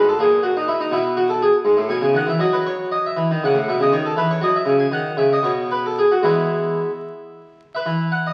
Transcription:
Already playing: G#2
0.08 A4
0.19 A#2 G#4
0.43 F#4
0.57 D#4
0.68 E4
0.81 D#4
0.91 B2 E4
1.17 F#4
1.29 A4
1.42 G#4
1.65 G#2
1.77 A2
1.89 B2 G#5
2.02 C#3
2.14 D#3 F#5
2.27 E3 E5
2.39 F#3 D#5
2.53 B4
2.66 C#5
2.92 D#5
3.06 E5
3.17 E3
3.31 D#3
3.44 C#3 F#5
3.54 A2
3.68 B2 E5
3.80 C#3 D#5
3.92 D#3 C#5
4.06 A4
4.17 E3 B4
4.31 C#5
4.41 F#3 D#5
4.56 E5
4.66 C#3
4.80 G#5
4.92 D#3 F#5
5.17 C#3 E5
5.33 D#5
5.43 B2 C#5
5.71 B4
5.86 A4
5.99 G#4
6.12 F#4
6.23 E3 G#3 B3 E4
7.75 B4 E5
7.86 E3
8.12 F#5
8.27 D#5

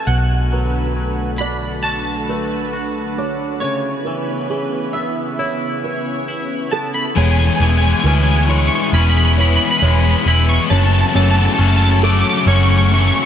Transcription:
0.07 B1 B2 D3 A3 F#4 B4 F#5
0.52 F#3 B4
0.96 F#3
1.38 D4 D5 B5
1.83 F#4 B4 A5
2.29 A3 B4
2.73 F#4
3.18 D4 C#5
3.60 C#3 B3 C#5
3.65 E4 B4
4.05 E3 B4
4.50 E3 G#4
4.93 B3 E5
5.39 E4 C#5
5.84 B4
6.28 E4
6.71 B3 A4 A5
6.94 B5
7.15 E1 E2 E3 G#3 B3 E4 G#4 C#5 G#5
7.23 G#5
7.31 G#5
7.39 G#5
7.47 G#5
7.55 G#5
7.60 E1 E3 G#3 B3 E4 G#4 G#5
7.69 G#5
7.78 G#5
7.85 G#5
7.92 G#5
8.00 G#5
8.04 D2 E3 G#3 B3 C#4 E4 G#4 B4 G#5
8.15 G#5
8.23 G#5
8.30 G#5
8.38 G#5
8.46 E3 G#3 B3 C#5 G#5 C#6
8.51 G#3 E4 G#4
8.58 C#6
8.67 C#6
8.75 C#6
8.82 C#6
8.93 E1 E3 G#3 B3 C#4 E4 G#4 B4 B5
9.02 B5
9.09 B5
9.17 B5
9.25 B5
9.33 B5
9.38 E3 G#3 B3 E4 G#4 C#5 B5
9.47 B5
9.56 B5
9.65 B5
9.71 B5
9.79 E1 E3 G#3 C#5 B5
9.83 B3 E4 G#4 B5
9.94 B5
10.03 B5
10.11 B5
10.18 B5
10.26 E1 E3 G#3 B3 E4 G#4 B5
10.49 C#6
10.70 F#1 F#2 C#3 F#3 A3 C#4 F#4 C#5 E5 A5
10.78 A5
10.85 A5
10.94 A5
11.01 A5
11.08 A5
11.14 F#1 F#2 C#3 E3 F#3 A3 C#4 F#4 C#5 A5
11.23 A5
11.30 A5
11.38 A5
11.45 A5
11.54 A5
11.58 F#1 F#2 C#3 F#3 A3 C#4 F#4 A5
11.68 A5
11.76 A5
11.84 A5
11.91 A5
12.03 F#2 C#3 F#3 A3 C#4 F#4 A4 D6
12.12 D6
12.20 D6
12.29 D6
12.37 D6
12.47 F#1 F#2 C#3 F#3 A3 C#4 F#4 C#5 F#5 C#6
12.55 C#6
12.63 C#6
12.71 C#6
12.78 C#6
12.85 C#6
12.92 F#2 C#3 E3 F#3 A3 C#4 F#4 C#6
13.00 C#6
13.08 C#6
13.15 C#6

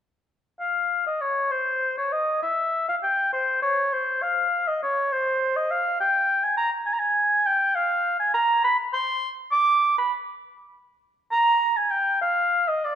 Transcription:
0.60 F5
1.07 D#5
1.21 C#5
1.51 C5
1.98 C#5
2.12 D#5
2.42 E5
2.89 F5
3.03 G5
3.33 C5
3.62 C#5
3.93 C5
4.22 F5
4.68 D#5
4.83 C#5
5.12 C5
5.56 D#5
5.71 F5
6.00 G5
6.43 G#5
6.57 A#5
6.86 G#5
6.93 A#5
6.99 G#5
7.46 G5
7.75 F5
8.20 G#5
8.34 A#5
8.64 B5
8.93 C6
9.52 D6
9.98 B5
11.31 A#5
11.77 G#5
11.91 G5
12.21 F5
12.68 D#5
12.84 D5

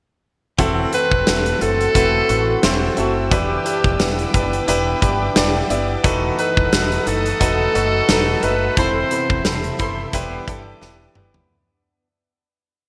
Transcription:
0.58 E1 E3 C4 E4 F#4 A4 F#5 A5 E6, kick, closed hi-hat
0.93 C4 E4 F#4 A4 B4, closed hi-hat
1.11 E1, kick
1.27 E1 A3 C4 E4 F#4 A4, snare, closed hi-hat
1.46 closed hi-hat
1.61 F#1 C4 E4 F#4 A4, closed hi-hat
1.81 closed hi-hat
1.94 E1 A3 C4 E4 F#4 B4, kick, closed hi-hat
2.28 A1 C4 E4 F#4 B4, closed hi-hat
2.63 E1 C4 E4 F#4 C5, snare, closed hi-hat
2.97 F#1 A3 C4 E4 F#4 A4, closed hi-hat
3.31 E1 E3 D4 E4 G4 B4 G5 D6, kick, closed hi-hat
3.65 D4 E4 G4 B4, closed hi-hat
3.84 E1, kick
3.99 E1 B3 D4 E4 G4 B4, snare, closed hi-hat
4.19 closed hi-hat
4.33 F#1 D4 E4 G4 B4, kick, closed hi-hat
4.53 closed hi-hat
4.68 E1 B3 D4 E4 G4 B4, closed hi-hat
5.01 G1 D4 E4 G4 B4 A5, kick, closed hi-hat
5.21 G5
5.35 E1 D4 E4 G4 D5 F#5, snare, closed hi-hat
5.56 G5
5.69 F#1 B3 D4 E4 G4 D5 E5, closed hi-hat
6.04 E1 E3 D#4 F#4 A4 B4 F#5 A5 D#6, kick, closed hi-hat
6.38 D#4 F#4 A4 B4, closed hi-hat
6.57 E1, kick
6.72 E1 A3 D#4 F#4 A4 B4, snare, closed hi-hat
6.92 closed hi-hat
7.06 F#1 D#4 F#4 A4 B4, closed hi-hat
7.26 closed hi-hat
7.40 E1 A3 D#4 F#4 A4 B4, kick, closed hi-hat
7.74 F#1 D#4 F#4 A4 B4, closed hi-hat
8.09 E1 D#4 F#4 A4 B4, snare, closed hi-hat
8.43 F#1 A3 D#4 F#4 A4 B4, closed hi-hat
8.77 E1 E3 C4 E4 A4 C5 E5 B5, kick, closed hi-hat
9.11 C3 B3 E4 A4 B5, closed hi-hat
9.30 E1, kick
9.45 E1 C3 E3 E4 A4 B5, snare, closed hi-hat
9.64 closed hi-hat
9.79 F#1 C3 B3 E4 A4 C5 B5 C6, kick, closed hi-hat
10.13 E1 E3 B3 D4 E4 G4 B4 D6, kick, closed hi-hat
10.47 G1 D4 E4 G4 A4, kick, closed hi-hat
10.81 E1 D4 E4 G4 B4, snare
11.15 F#1 B3 D4 E4 G4 B4, mid tom
11.34 floor tom

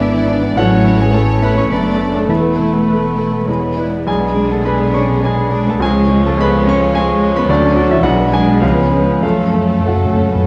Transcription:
Already playing: G#1 G#2 E3 B3 D4 G#4 A4 B4 D5 E5 G#5 A5 B5
0.00 D4 E5
0.14 E4
0.29 D4 D5
0.43 B3
0.56 A1 A2 E3 F#3 A3 C#4 F#4 C#5 F#5 A5
0.70 C#4
0.85 C#4 E4
1.00 G#3 C#4 G#4 G#5
1.13 E3 A3 C#4 A4 C#5 A5
1.27 C#4
1.42 B3 E4 B4 B5
1.57 C#4 C#5 C#6
1.70 F#1 F#2 A3 B3 D4 B4 D5 A5 B5
1.83 D4
1.98 A3 C#4 D4 C#5 D5
2.12 A3 D4 A5
2.17 A4
2.27 E1 E2 E3 A3 B3 E4 B4 E5 B5
2.41 B3
2.58 A3 E4
2.74 B3
2.87 A3 A4 B4
3.03 B3
3.18 E4 A4
3.32 B3 B4
3.46 E2 G#3 B3 C#5 B5
3.62 B3
3.77 E4 B4 D5
3.92 B3
4.06 B1 G#3 D4 G#4 D5 G#5 B5
4.21 B3
4.36 G#3 D4
4.49 A3 B3 A5
4.53 A4
4.64 G#3 B3 G#4 B4 D5 B5
4.79 B3
4.93 C#4 D4 C#5 C#6
5.08 B3
5.22 G#3 D5 G#5 B5
5.26 G#4
5.37 B3
5.52 D4 G#4
5.67 A3 B3 A4 A5
5.80 C#2 F3 G#3 C#4 F4 G#4 C#5 G#5 C#6
5.95 C#4
6.08 F3 G#3
6.23 A3 C#4 A5
6.28 A4
6.38 G#3 B3 G#4 B5
6.42 B4
6.51 C#4
6.66 G#3 C#4 F4 C#5 C#6
6.81 C#4
6.94 F3 G#3 G#4 C#5 G#5 C#6
7.08 C#4
7.22 G#3 F4
7.36 B3 C#4 B4 B5
7.47 D2 D3 F#3 A3 A4 D5 C#6
7.51 D4
7.63 C#4
7.76 C#4 D4 F#4
7.90 E3 C#4 E4 E5
8.03 B1 F#3 G#3 D4 F#4 B4 D5 F#5 B5
8.19 B3
8.33 G#3 D4 G#4 G#5
8.47 B3
8.61 C#2 F3 G#3 B3 C#4 F4 C#5 F5 B5
8.76 B3
8.90 C#4 G#4
9.07 B3
9.21 F#2 F3 A3 F4 A4 C#5 F5 A5
9.39 F#2 C#4
9.47 F#2
9.53 F#2 A3
9.63 F#2
9.69 F#2 C#4
9.79 F#2
9.84 F#2 F#3 A3 A4 C#5 F#5 A5
9.89 F#4
9.96 F#2 C#4
10.04 F#2
10.13 F#2 A3 C#4
10.20 F#2
10.28 F#2 C#4
10.32 F#2 B3
10.43 F#2

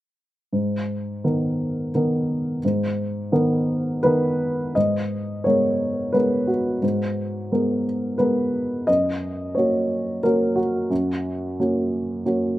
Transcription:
0.53 G#2
1.24 D#3 B3 A#4
1.95 D#3 B3 A#4
2.65 G#2
3.32 D#3 B3 A#4
4.03 D#3 B3 A#4 B4
4.75 G#2 D#5
5.44 G#3 B3 A#4 C#5
6.13 G#3 B3 A#4 B4
6.47 F#4
6.82 G#2
7.52 G#3 B3 A#4
8.18 G#3 B3 A#4 B4
8.87 F#2 D#5
9.55 A#3 C#4 F#4 C#5
10.23 A#3 C#4 F#4 A#4
10.56 F#4
10.90 F#2
11.60 A#3 C#4 F#4
12.26 A#3 C#4 F#4

